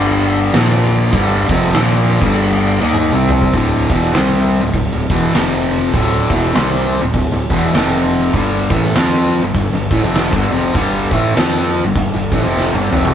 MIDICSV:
0, 0, Header, 1, 4, 480
1, 0, Start_track
1, 0, Tempo, 601202
1, 908, Time_signature, 4, 2, 24, 8
1, 10492, End_track
2, 0, Start_track
2, 0, Title_t, "Distorted electric guitar"
2, 0, Program_c, 0, 30
2, 0, Note_on_c, 0, 43, 97
2, 0, Note_on_c, 0, 50, 103
2, 0, Note_on_c, 0, 55, 110
2, 418, Note_off_c, 0, 43, 0
2, 421, Note_on_c, 0, 46, 99
2, 423, Note_off_c, 0, 50, 0
2, 425, Note_off_c, 0, 55, 0
2, 428, Note_on_c, 0, 53, 90
2, 431, Note_on_c, 0, 58, 104
2, 897, Note_off_c, 0, 46, 0
2, 900, Note_on_c, 0, 43, 94
2, 902, Note_off_c, 0, 53, 0
2, 903, Note_off_c, 0, 58, 0
2, 906, Note_on_c, 0, 50, 94
2, 910, Note_on_c, 0, 55, 105
2, 1184, Note_off_c, 0, 43, 0
2, 1187, Note_off_c, 0, 50, 0
2, 1188, Note_on_c, 0, 41, 95
2, 1189, Note_off_c, 0, 55, 0
2, 1192, Note_on_c, 0, 48, 103
2, 1197, Note_on_c, 0, 53, 97
2, 1376, Note_off_c, 0, 53, 0
2, 1377, Note_off_c, 0, 41, 0
2, 1379, Note_off_c, 0, 48, 0
2, 1380, Note_on_c, 0, 46, 96
2, 1386, Note_on_c, 0, 53, 93
2, 1392, Note_on_c, 0, 58, 100
2, 1762, Note_off_c, 0, 46, 0
2, 1765, Note_off_c, 0, 53, 0
2, 1767, Note_on_c, 0, 43, 93
2, 1768, Note_off_c, 0, 58, 0
2, 1772, Note_on_c, 0, 50, 100
2, 1778, Note_on_c, 0, 55, 105
2, 2238, Note_off_c, 0, 50, 0
2, 2242, Note_off_c, 0, 43, 0
2, 2242, Note_on_c, 0, 51, 96
2, 2244, Note_off_c, 0, 55, 0
2, 2247, Note_on_c, 0, 58, 100
2, 2252, Note_on_c, 0, 63, 102
2, 2477, Note_off_c, 0, 51, 0
2, 2480, Note_off_c, 0, 58, 0
2, 2482, Note_off_c, 0, 63, 0
2, 2486, Note_on_c, 0, 48, 96
2, 2490, Note_on_c, 0, 55, 101
2, 2495, Note_on_c, 0, 60, 109
2, 2817, Note_off_c, 0, 48, 0
2, 2819, Note_off_c, 0, 55, 0
2, 2821, Note_off_c, 0, 60, 0
2, 2822, Note_on_c, 0, 38, 90
2, 2826, Note_on_c, 0, 45, 97
2, 2833, Note_on_c, 0, 50, 107
2, 3104, Note_off_c, 0, 38, 0
2, 3106, Note_off_c, 0, 45, 0
2, 3109, Note_off_c, 0, 50, 0
2, 3110, Note_on_c, 0, 40, 92
2, 3116, Note_on_c, 0, 47, 93
2, 3120, Note_on_c, 0, 52, 100
2, 3296, Note_off_c, 0, 40, 0
2, 3300, Note_off_c, 0, 47, 0
2, 3302, Note_off_c, 0, 52, 0
2, 3302, Note_on_c, 0, 48, 86
2, 3307, Note_on_c, 0, 55, 99
2, 3310, Note_on_c, 0, 60, 95
2, 3682, Note_off_c, 0, 48, 0
2, 3684, Note_off_c, 0, 55, 0
2, 3686, Note_off_c, 0, 60, 0
2, 3687, Note_on_c, 0, 38, 64
2, 3690, Note_on_c, 0, 45, 75
2, 3774, Note_off_c, 0, 38, 0
2, 3776, Note_off_c, 0, 45, 0
2, 3784, Note_on_c, 0, 38, 61
2, 3785, Note_on_c, 0, 45, 73
2, 3924, Note_off_c, 0, 38, 0
2, 3929, Note_off_c, 0, 45, 0
2, 3933, Note_on_c, 0, 38, 64
2, 3937, Note_on_c, 0, 45, 64
2, 4070, Note_off_c, 0, 38, 0
2, 4074, Note_on_c, 0, 40, 87
2, 4075, Note_off_c, 0, 45, 0
2, 4078, Note_on_c, 0, 47, 102
2, 4083, Note_on_c, 0, 52, 103
2, 4258, Note_off_c, 0, 40, 0
2, 4260, Note_off_c, 0, 47, 0
2, 4262, Note_on_c, 0, 41, 81
2, 4263, Note_off_c, 0, 52, 0
2, 4267, Note_on_c, 0, 48, 101
2, 4269, Note_on_c, 0, 53, 97
2, 4737, Note_off_c, 0, 41, 0
2, 4739, Note_off_c, 0, 48, 0
2, 4740, Note_off_c, 0, 53, 0
2, 4740, Note_on_c, 0, 38, 91
2, 4745, Note_on_c, 0, 45, 97
2, 4749, Note_on_c, 0, 50, 106
2, 5022, Note_off_c, 0, 38, 0
2, 5025, Note_off_c, 0, 45, 0
2, 5027, Note_off_c, 0, 50, 0
2, 5032, Note_on_c, 0, 40, 99
2, 5040, Note_on_c, 0, 47, 100
2, 5043, Note_on_c, 0, 52, 106
2, 5217, Note_off_c, 0, 40, 0
2, 5221, Note_off_c, 0, 47, 0
2, 5221, Note_on_c, 0, 48, 99
2, 5223, Note_off_c, 0, 52, 0
2, 5225, Note_on_c, 0, 55, 92
2, 5231, Note_on_c, 0, 60, 96
2, 5601, Note_off_c, 0, 48, 0
2, 5603, Note_off_c, 0, 55, 0
2, 5606, Note_off_c, 0, 60, 0
2, 5607, Note_on_c, 0, 38, 68
2, 5609, Note_on_c, 0, 45, 69
2, 5689, Note_off_c, 0, 38, 0
2, 5694, Note_off_c, 0, 45, 0
2, 5699, Note_on_c, 0, 38, 63
2, 5703, Note_on_c, 0, 45, 74
2, 5835, Note_off_c, 0, 45, 0
2, 5836, Note_off_c, 0, 38, 0
2, 5845, Note_on_c, 0, 45, 69
2, 5846, Note_on_c, 0, 38, 72
2, 5986, Note_off_c, 0, 38, 0
2, 5989, Note_on_c, 0, 40, 90
2, 5990, Note_off_c, 0, 45, 0
2, 5994, Note_on_c, 0, 47, 97
2, 6000, Note_on_c, 0, 52, 103
2, 6176, Note_off_c, 0, 40, 0
2, 6178, Note_off_c, 0, 47, 0
2, 6180, Note_on_c, 0, 41, 88
2, 6181, Note_off_c, 0, 52, 0
2, 6188, Note_on_c, 0, 48, 96
2, 6192, Note_on_c, 0, 53, 106
2, 6656, Note_off_c, 0, 41, 0
2, 6659, Note_on_c, 0, 43, 90
2, 6660, Note_off_c, 0, 48, 0
2, 6662, Note_off_c, 0, 53, 0
2, 6664, Note_on_c, 0, 50, 104
2, 6670, Note_on_c, 0, 55, 98
2, 6942, Note_off_c, 0, 43, 0
2, 6945, Note_off_c, 0, 50, 0
2, 6948, Note_off_c, 0, 55, 0
2, 6951, Note_on_c, 0, 45, 91
2, 6956, Note_on_c, 0, 52, 91
2, 6962, Note_on_c, 0, 57, 100
2, 7137, Note_off_c, 0, 45, 0
2, 7138, Note_off_c, 0, 52, 0
2, 7142, Note_off_c, 0, 57, 0
2, 7142, Note_on_c, 0, 53, 93
2, 7148, Note_on_c, 0, 60, 96
2, 7154, Note_on_c, 0, 65, 99
2, 7522, Note_off_c, 0, 53, 0
2, 7525, Note_off_c, 0, 60, 0
2, 7528, Note_off_c, 0, 65, 0
2, 7530, Note_on_c, 0, 43, 68
2, 7533, Note_on_c, 0, 50, 74
2, 7611, Note_off_c, 0, 43, 0
2, 7613, Note_off_c, 0, 50, 0
2, 7620, Note_on_c, 0, 43, 69
2, 7622, Note_on_c, 0, 50, 67
2, 7760, Note_off_c, 0, 43, 0
2, 7763, Note_off_c, 0, 50, 0
2, 7769, Note_on_c, 0, 43, 65
2, 7773, Note_on_c, 0, 50, 78
2, 7907, Note_off_c, 0, 43, 0
2, 7911, Note_on_c, 0, 45, 89
2, 7915, Note_off_c, 0, 50, 0
2, 7918, Note_on_c, 0, 52, 107
2, 7996, Note_off_c, 0, 45, 0
2, 7999, Note_on_c, 0, 41, 93
2, 8004, Note_off_c, 0, 52, 0
2, 8007, Note_on_c, 0, 48, 90
2, 8013, Note_on_c, 0, 53, 95
2, 8235, Note_off_c, 0, 41, 0
2, 8239, Note_off_c, 0, 48, 0
2, 8241, Note_on_c, 0, 43, 96
2, 8242, Note_off_c, 0, 53, 0
2, 8250, Note_on_c, 0, 50, 105
2, 8381, Note_off_c, 0, 43, 0
2, 8386, Note_off_c, 0, 50, 0
2, 8389, Note_on_c, 0, 41, 95
2, 8396, Note_on_c, 0, 48, 106
2, 8399, Note_on_c, 0, 53, 98
2, 8574, Note_off_c, 0, 41, 0
2, 8577, Note_on_c, 0, 43, 93
2, 8579, Note_off_c, 0, 48, 0
2, 8581, Note_off_c, 0, 53, 0
2, 8583, Note_on_c, 0, 50, 105
2, 8586, Note_on_c, 0, 55, 103
2, 8862, Note_off_c, 0, 43, 0
2, 8865, Note_off_c, 0, 50, 0
2, 8866, Note_off_c, 0, 55, 0
2, 8870, Note_on_c, 0, 45, 88
2, 8873, Note_on_c, 0, 52, 94
2, 8879, Note_on_c, 0, 57, 110
2, 9057, Note_off_c, 0, 45, 0
2, 9058, Note_off_c, 0, 52, 0
2, 9061, Note_off_c, 0, 57, 0
2, 9061, Note_on_c, 0, 53, 87
2, 9067, Note_on_c, 0, 60, 104
2, 9070, Note_on_c, 0, 65, 100
2, 9443, Note_off_c, 0, 53, 0
2, 9445, Note_off_c, 0, 60, 0
2, 9447, Note_off_c, 0, 65, 0
2, 9455, Note_on_c, 0, 43, 66
2, 9456, Note_on_c, 0, 50, 77
2, 9536, Note_off_c, 0, 43, 0
2, 9538, Note_off_c, 0, 50, 0
2, 9546, Note_on_c, 0, 43, 62
2, 9548, Note_on_c, 0, 50, 74
2, 9680, Note_off_c, 0, 43, 0
2, 9684, Note_off_c, 0, 50, 0
2, 9689, Note_on_c, 0, 43, 66
2, 9694, Note_on_c, 0, 50, 74
2, 9832, Note_off_c, 0, 43, 0
2, 9835, Note_on_c, 0, 45, 88
2, 9837, Note_off_c, 0, 50, 0
2, 9840, Note_on_c, 0, 52, 100
2, 9917, Note_off_c, 0, 45, 0
2, 9920, Note_on_c, 0, 41, 86
2, 9925, Note_off_c, 0, 52, 0
2, 9928, Note_on_c, 0, 48, 93
2, 9933, Note_on_c, 0, 53, 93
2, 10157, Note_off_c, 0, 41, 0
2, 10161, Note_off_c, 0, 48, 0
2, 10163, Note_off_c, 0, 53, 0
2, 10167, Note_on_c, 0, 43, 86
2, 10172, Note_on_c, 0, 50, 104
2, 10303, Note_off_c, 0, 43, 0
2, 10306, Note_off_c, 0, 50, 0
2, 10306, Note_on_c, 0, 41, 85
2, 10309, Note_on_c, 0, 48, 98
2, 10315, Note_on_c, 0, 53, 110
2, 10489, Note_off_c, 0, 41, 0
2, 10492, Note_off_c, 0, 48, 0
2, 10492, Note_off_c, 0, 53, 0
2, 10492, End_track
3, 0, Start_track
3, 0, Title_t, "Fingered electric bass"
3, 0, Program_c, 1, 33
3, 0, Note_on_c, 1, 31, 101
3, 394, Note_off_c, 1, 31, 0
3, 431, Note_on_c, 1, 34, 91
3, 877, Note_off_c, 1, 34, 0
3, 904, Note_on_c, 1, 31, 94
3, 1174, Note_off_c, 1, 31, 0
3, 1194, Note_on_c, 1, 29, 102
3, 1372, Note_off_c, 1, 29, 0
3, 1380, Note_on_c, 1, 34, 94
3, 1740, Note_off_c, 1, 34, 0
3, 1769, Note_on_c, 1, 31, 101
3, 2217, Note_off_c, 1, 31, 0
3, 2246, Note_on_c, 1, 39, 100
3, 2471, Note_off_c, 1, 39, 0
3, 2487, Note_on_c, 1, 36, 91
3, 2800, Note_off_c, 1, 36, 0
3, 2822, Note_on_c, 1, 26, 92
3, 3092, Note_off_c, 1, 26, 0
3, 3114, Note_on_c, 1, 28, 93
3, 3291, Note_off_c, 1, 28, 0
3, 3307, Note_on_c, 1, 36, 87
3, 3663, Note_off_c, 1, 36, 0
3, 3688, Note_on_c, 1, 26, 81
3, 3777, Note_off_c, 1, 26, 0
3, 3781, Note_on_c, 1, 26, 81
3, 3917, Note_off_c, 1, 26, 0
3, 3934, Note_on_c, 1, 26, 76
3, 4066, Note_off_c, 1, 26, 0
3, 4069, Note_on_c, 1, 28, 88
3, 4248, Note_off_c, 1, 28, 0
3, 4264, Note_on_c, 1, 29, 94
3, 4712, Note_off_c, 1, 29, 0
3, 4741, Note_on_c, 1, 26, 97
3, 5011, Note_off_c, 1, 26, 0
3, 5030, Note_on_c, 1, 28, 96
3, 5208, Note_off_c, 1, 28, 0
3, 5222, Note_on_c, 1, 36, 91
3, 5581, Note_off_c, 1, 36, 0
3, 5605, Note_on_c, 1, 26, 79
3, 5695, Note_off_c, 1, 26, 0
3, 5701, Note_on_c, 1, 26, 78
3, 5837, Note_off_c, 1, 26, 0
3, 5842, Note_on_c, 1, 26, 74
3, 5979, Note_off_c, 1, 26, 0
3, 5991, Note_on_c, 1, 28, 95
3, 6169, Note_off_c, 1, 28, 0
3, 6176, Note_on_c, 1, 29, 97
3, 6628, Note_off_c, 1, 29, 0
3, 6658, Note_on_c, 1, 31, 93
3, 6930, Note_off_c, 1, 31, 0
3, 6951, Note_on_c, 1, 33, 104
3, 7129, Note_off_c, 1, 33, 0
3, 7146, Note_on_c, 1, 41, 93
3, 7503, Note_off_c, 1, 41, 0
3, 7526, Note_on_c, 1, 31, 79
3, 7616, Note_off_c, 1, 31, 0
3, 7623, Note_on_c, 1, 31, 84
3, 7758, Note_off_c, 1, 31, 0
3, 7765, Note_on_c, 1, 31, 79
3, 7901, Note_off_c, 1, 31, 0
3, 7913, Note_on_c, 1, 33, 91
3, 7998, Note_off_c, 1, 33, 0
3, 8003, Note_on_c, 1, 29, 101
3, 8229, Note_off_c, 1, 29, 0
3, 8245, Note_on_c, 1, 31, 101
3, 8381, Note_off_c, 1, 31, 0
3, 8395, Note_on_c, 1, 29, 88
3, 8571, Note_off_c, 1, 29, 0
3, 8584, Note_on_c, 1, 31, 93
3, 8854, Note_off_c, 1, 31, 0
3, 8874, Note_on_c, 1, 33, 98
3, 9051, Note_off_c, 1, 33, 0
3, 9068, Note_on_c, 1, 41, 92
3, 9425, Note_off_c, 1, 41, 0
3, 9456, Note_on_c, 1, 31, 80
3, 9542, Note_off_c, 1, 31, 0
3, 9547, Note_on_c, 1, 31, 81
3, 9681, Note_off_c, 1, 31, 0
3, 9698, Note_on_c, 1, 31, 82
3, 9829, Note_off_c, 1, 31, 0
3, 9836, Note_on_c, 1, 33, 91
3, 9924, Note_off_c, 1, 33, 0
3, 9942, Note_on_c, 1, 29, 98
3, 10160, Note_off_c, 1, 29, 0
3, 10179, Note_on_c, 1, 31, 95
3, 10310, Note_off_c, 1, 31, 0
3, 10323, Note_on_c, 1, 29, 94
3, 10492, Note_off_c, 1, 29, 0
3, 10492, End_track
4, 0, Start_track
4, 0, Title_t, "Drums"
4, 420, Note_on_c, 9, 49, 62
4, 431, Note_on_c, 9, 38, 109
4, 500, Note_off_c, 9, 49, 0
4, 511, Note_off_c, 9, 38, 0
4, 902, Note_on_c, 9, 36, 108
4, 903, Note_on_c, 9, 49, 65
4, 981, Note_off_c, 9, 36, 0
4, 983, Note_off_c, 9, 49, 0
4, 1191, Note_on_c, 9, 36, 114
4, 1271, Note_off_c, 9, 36, 0
4, 1384, Note_on_c, 9, 49, 67
4, 1395, Note_on_c, 9, 38, 114
4, 1464, Note_off_c, 9, 49, 0
4, 1475, Note_off_c, 9, 38, 0
4, 1769, Note_on_c, 9, 36, 112
4, 1849, Note_off_c, 9, 36, 0
4, 1867, Note_on_c, 9, 49, 62
4, 1947, Note_off_c, 9, 49, 0
4, 2340, Note_on_c, 9, 48, 61
4, 2420, Note_off_c, 9, 48, 0
4, 2626, Note_on_c, 9, 45, 85
4, 2706, Note_off_c, 9, 45, 0
4, 2728, Note_on_c, 9, 36, 88
4, 2807, Note_off_c, 9, 36, 0
4, 2824, Note_on_c, 9, 36, 105
4, 2825, Note_on_c, 9, 46, 57
4, 2904, Note_off_c, 9, 36, 0
4, 2905, Note_off_c, 9, 46, 0
4, 3112, Note_on_c, 9, 36, 111
4, 3192, Note_off_c, 9, 36, 0
4, 3302, Note_on_c, 9, 46, 57
4, 3313, Note_on_c, 9, 38, 115
4, 3381, Note_off_c, 9, 46, 0
4, 3393, Note_off_c, 9, 38, 0
4, 3779, Note_on_c, 9, 46, 59
4, 3781, Note_on_c, 9, 36, 89
4, 3859, Note_off_c, 9, 46, 0
4, 3861, Note_off_c, 9, 36, 0
4, 4072, Note_on_c, 9, 36, 115
4, 4151, Note_off_c, 9, 36, 0
4, 4261, Note_on_c, 9, 46, 53
4, 4272, Note_on_c, 9, 38, 107
4, 4341, Note_off_c, 9, 46, 0
4, 4352, Note_off_c, 9, 38, 0
4, 4740, Note_on_c, 9, 36, 108
4, 4741, Note_on_c, 9, 46, 66
4, 4820, Note_off_c, 9, 36, 0
4, 4821, Note_off_c, 9, 46, 0
4, 5031, Note_on_c, 9, 36, 110
4, 5110, Note_off_c, 9, 36, 0
4, 5223, Note_on_c, 9, 46, 62
4, 5234, Note_on_c, 9, 38, 113
4, 5303, Note_off_c, 9, 46, 0
4, 5314, Note_off_c, 9, 38, 0
4, 5700, Note_on_c, 9, 36, 93
4, 5703, Note_on_c, 9, 46, 60
4, 5780, Note_off_c, 9, 36, 0
4, 5782, Note_off_c, 9, 46, 0
4, 5990, Note_on_c, 9, 36, 115
4, 6069, Note_off_c, 9, 36, 0
4, 6176, Note_on_c, 9, 46, 54
4, 6188, Note_on_c, 9, 38, 107
4, 6256, Note_off_c, 9, 46, 0
4, 6267, Note_off_c, 9, 38, 0
4, 6656, Note_on_c, 9, 46, 56
4, 6658, Note_on_c, 9, 36, 110
4, 6736, Note_off_c, 9, 46, 0
4, 6738, Note_off_c, 9, 36, 0
4, 6949, Note_on_c, 9, 36, 107
4, 7028, Note_off_c, 9, 36, 0
4, 7140, Note_on_c, 9, 46, 54
4, 7151, Note_on_c, 9, 38, 113
4, 7220, Note_off_c, 9, 46, 0
4, 7231, Note_off_c, 9, 38, 0
4, 7621, Note_on_c, 9, 36, 92
4, 7624, Note_on_c, 9, 46, 59
4, 7701, Note_off_c, 9, 36, 0
4, 7703, Note_off_c, 9, 46, 0
4, 7911, Note_on_c, 9, 36, 113
4, 7991, Note_off_c, 9, 36, 0
4, 8099, Note_on_c, 9, 46, 53
4, 8110, Note_on_c, 9, 38, 100
4, 8178, Note_off_c, 9, 46, 0
4, 8190, Note_off_c, 9, 38, 0
4, 8247, Note_on_c, 9, 36, 100
4, 8326, Note_off_c, 9, 36, 0
4, 8582, Note_on_c, 9, 36, 110
4, 8583, Note_on_c, 9, 46, 58
4, 8662, Note_off_c, 9, 36, 0
4, 8663, Note_off_c, 9, 46, 0
4, 8873, Note_on_c, 9, 36, 101
4, 8953, Note_off_c, 9, 36, 0
4, 9068, Note_on_c, 9, 46, 61
4, 9079, Note_on_c, 9, 38, 107
4, 9148, Note_off_c, 9, 46, 0
4, 9159, Note_off_c, 9, 38, 0
4, 9545, Note_on_c, 9, 36, 99
4, 9550, Note_on_c, 9, 46, 59
4, 9625, Note_off_c, 9, 36, 0
4, 9630, Note_off_c, 9, 46, 0
4, 9834, Note_on_c, 9, 36, 106
4, 9914, Note_off_c, 9, 36, 0
4, 10039, Note_on_c, 9, 38, 54
4, 10119, Note_off_c, 9, 38, 0
4, 10172, Note_on_c, 9, 48, 65
4, 10252, Note_off_c, 9, 48, 0
4, 10318, Note_on_c, 9, 45, 87
4, 10398, Note_off_c, 9, 45, 0
4, 10419, Note_on_c, 9, 43, 91
4, 10492, Note_off_c, 9, 43, 0
4, 10492, End_track
0, 0, End_of_file